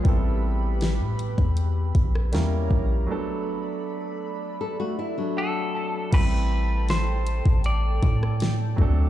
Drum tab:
CC |----------------|----------------|x---------------|
HH |x---x-xxx-x-x---|----------------|x---x-xxx-x-x---|
SD |----o------ro---|----------------|----o------ro---|
BD |o------o--o---o-|----------------|o------o--o---o-|